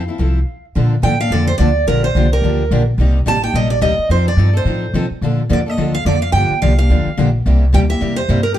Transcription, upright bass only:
0.19 0.42 C2 medium
0.76 1.02 A#2 medium
1.03 1.30 A2 medium
1.30 1.58 F2 medium
1.59 1.86 D2 medium
1.88 2.14 A#1 medium
2.15 2.41 C2 medium
2.42 2.69 D2 medium
2.71 2.97 A#1 medium
2.98 3.25 C2 medium
3.26 3.53 A1 medium
3.54 3.81 A#1 medium
3.82 3.97 D2 medium
3.98 muted upright bass stroke soft
4.09 4.36 F2 medium
4.37 4.64 G2 medium
4.65 4.92 A2 medium
4.94 5.09 C3 medium
5.10 muted upright bass stroke soft
5.21 5.48 A#2 medium
5.50 5.77 D#2 medium
5.78 6.05 D2 medium
6.05 6.32 F2 medium
6.33 6.48 G2 medium
6.50 muted upright bass stroke soft
6.62 6.89 C2 medium
6.90 7.04 D2 medium
7.06 muted upright bass stroke soft
7.18 7.44 A#1 medium
7.46 7.72 C2 medium
7.73 8.00 D2 medium
8.01 8.28 E2 medium
8.29 8.55 G2 medium

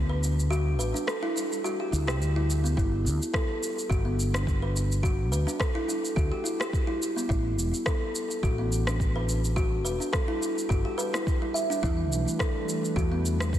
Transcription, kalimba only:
0.09 0.22 B4 medium
0.51 0.60 F#4 loud
0.79 0.88 B4 medium
0.94 1.07 D4 medium
1.07 1.21 A4 loud
1.23 1.35 E4 loud
1.36 1.51 E4 medium
1.64 1.73 F#4 medium
1.80 1.92 G4 medium
1.92 2.07 E4 medium
2.08 2.20 G4 loud
2.36 2.48 E4 medium
2.64 2.76 B3 medium
2.77 2.86 E4 loud
3.34 3.89 A4 loud
3.90 3.99 F#4 medium
4.05 4.18 B3 medium
4.34 4.46 D4 medium
4.62 4.75 B4 medium
5.03 5.12 F#4 loud
5.32 5.41 B4 medium
5.47 5.59 D4 medium
5.60 5.74 A4 loud
5.75 5.87 E4 loud
5.88 6.03 E4 medium
6.16 6.25 F#4 medium
6.32 6.44 G4 medium
6.44 6.59 E4 medium
6.60 6.72 G4 loud
6.87 7.00 E4 medium
7.16 7.29 B3 medium
7.29 7.39 E4 loud
7.86 8.42 A4 loud
8.43 8.52 F#4 medium
8.58 8.71 B3 medium
8.87 8.99 D4 medium
9.16 9.28 B4 medium
9.56 9.65 F#4 loud
9.85 9.94 B4 medium
10.00 10.12 D4 medium
10.13 10.27 A4 loud
10.28 10.40 E4 loud
10.41 10.56 E4 medium
10.69 10.78 F#4 medium
10.85 10.97 G4 medium
10.98 11.12 B4 loud
11.13 11.25 E4 medium
11.42 11.49 E4 medium
11.54 11.63 E5 medium
11.70 11.82 D4 loud
11.83 11.92 E4 loud
12.39 12.95 A4 loud
12.96 13.05 F#4 loud
13.12 13.24 B3 medium
13.40 13.52 D4 medium

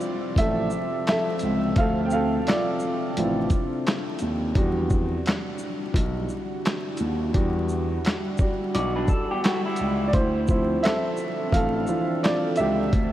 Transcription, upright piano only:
0.00 1.78 F3 medium
0.00 1.78 C4 soft
0.00 3.19 E4 medium
0.00 0.35 F4 medium
0.00 4.57 C5 medium
0.00 0.40 D5 loud
0.38 1.04 A4 medium
0.38 1.07 E5 loud
1.09 1.74 A4 medium
1.09 1.74 E5 medium
1.78 3.17 F3 medium
1.78 3.17 C4 soft
1.78 2.05 A4 medium
1.78 4.53 E5 medium
1.78 2.07 F5 loud
2.06 2.11 G5 medium
2.12 2.45 A4 medium
2.12 2.48 F5 medium
2.47 3.83 F4 medium
2.47 3.82 D5 medium
3.18 3.49 F3 soft
3.18 3.49 C4 soft
3.18 3.49 E4 medium
4.56 7.31 G3 medium
4.56 7.31 D4 soft
4.56 7.32 F#4 medium
7.35 8.39 G3 medium
7.35 8.39 D4 soft
7.35 8.39 F#4 medium
8.40 8.71 G3 soft
8.40 8.71 D4 soft
8.40 8.72 F#4 medium
10.08 10.14 D5 medium
10.14 10.49 E4 medium
10.14 10.86 C5 medium
10.49 11.50 F3 medium
10.49 11.50 C4 medium
10.49 11.50 E4 medium
10.83 11.50 A4 medium
10.83 11.55 E5 loud
11.53 12.20 A4 medium
11.53 12.25 F5 loud
11.88 12.20 E3 medium
11.88 12.20 F3 soft
11.88 12.20 C4 soft
12.23 12.56 F4 medium
12.23 12.59 D5 medium
12.57 13.12 G4 medium
12.57 13.12 E5 loud

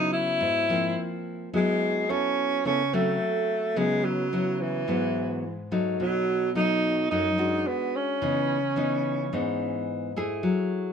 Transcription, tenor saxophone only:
0.00 0.12 D#4 medium
0.13 1.21 E4 medium
1.55 2.11 G#3 loud
2.10 2.65 C#4 medium
2.66 2.95 C#4 medium
2.94 3.79 A3 medium
3.77 4.06 G#3 medium
4.05 4.62 F#3 medium
4.61 5.71 E3 medium
6.00 6.51 F#3 medium
6.56 7.07 D#4 loud
7.11 7.68 D#4 medium
7.67 7.97 B3 medium
7.96 9.89 C#4 medium

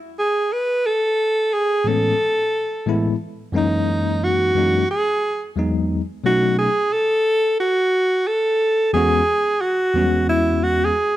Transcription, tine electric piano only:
1.84 2.12 A2 medium
1.84 2.13 E3 medium
1.84 2.13 G#3 medium
1.84 2.13 B3 medium
1.84 2.14 C#4 medium
2.86 3.13 A2 medium
2.86 3.14 E3 medium
2.86 3.14 G#3 medium
2.86 3.15 B3 medium
2.86 3.15 E4 medium
3.52 4.50 F#2 medium
3.52 4.50 E3 medium
3.52 4.51 G#3 medium
3.52 4.51 A#3 medium
3.52 4.52 C#4 medium
3.52 4.52 D#4 medium
4.55 4.82 F#2 medium
4.55 4.82 E3 medium
4.55 4.82 G#3 medium
4.55 4.83 A#3 medium
4.55 4.83 C#4 medium
4.55 4.84 D#4 medium
5.56 5.99 E2 medium
5.56 5.99 F#3 medium
5.56 6.00 G#3 medium
5.56 6.00 B3 medium
5.56 6.01 D#4 medium
6.24 6.67 B2 medium
6.24 6.67 F#3 medium
6.24 6.67 A3 medium
6.24 6.68 C#4 medium
6.24 6.68 D#4 medium
8.93 9.20 E2 medium
8.93 9.21 G#3 medium
8.93 9.21 B3 medium
8.93 9.22 C#4 medium
8.93 9.22 F#4 medium
9.94 10.91 E2 medium
9.94 10.04 G3 soft
9.94 10.92 B3 medium
9.94 10.92 C#4 medium
9.94 10.93 F#4 medium
10.01 10.95 G#3 medium

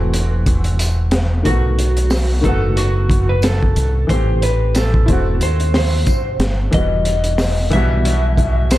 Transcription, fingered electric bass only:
0.00 1.43 E1 medium
1.45 2.41 B1 medium
2.44 3.73 F#1 loud
3.77 4.06 C2 medium
4.09 5.05 A1 medium
5.09 5.40 E1 loud
5.40 6.04 D#2 medium
6.39 6.69 G1 medium
6.73 7.69 E1 medium
7.72 8.78 B1 loud

